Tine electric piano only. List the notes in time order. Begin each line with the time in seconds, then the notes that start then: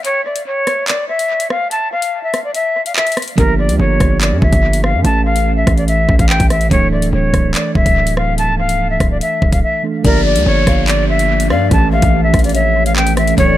3.36 F3 A#3 D4
3.40 G4
5.02 E3 A3 C#4
5.07 A4
6.69 E3 A3 D4
6.73 A4
9.83 E3 A3 D4 A4
10.02 F3 A#3 D4
10.07 G4
11.69 E3 A3 C#4
11.73 A4
13.36 E3 A3 D4
13.40 A4